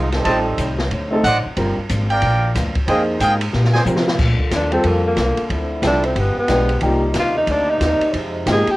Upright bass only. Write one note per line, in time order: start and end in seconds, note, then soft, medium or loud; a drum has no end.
0.00 0.24 C2 medium
0.25 0.57 A1 medium
0.58 0.90 C2 medium
0.91 1.23 D2 medium
1.23 1.43 A1 medium
1.45 muted upright bass stroke soft
1.57 1.76 G1 medium
1.78 muted upright bass stroke soft
1.90 2.21 G#1 medium
2.22 2.54 A#1 medium
2.55 2.74 D2 medium
2.75 muted upright bass stroke soft
2.87 3.19 F2 medium
3.20 3.52 G#2 medium
3.54 3.85 A#2 medium
3.85 4.18 C3 medium
4.19 4.38 A#2 medium
4.40 muted upright bass stroke soft
4.51 4.83 D#2 medium
4.84 5.16 F2 medium
5.17 5.36 C2 medium
5.50 5.81 D2 medium
5.82 6.15 C2 medium
6.15 6.35 G1 medium
6.35 muted upright bass stroke soft
6.48 6.81 B1 medium
6.81 7.14 C2 medium
7.14 7.46 D#2 medium
7.47 7.79 D2 medium
7.80 8.00 D#2 medium
8.00 muted upright bass stroke soft
8.13 8.45 F2 medium
8.46 8.65 G#2 medium
8.67 muted upright bass stroke soft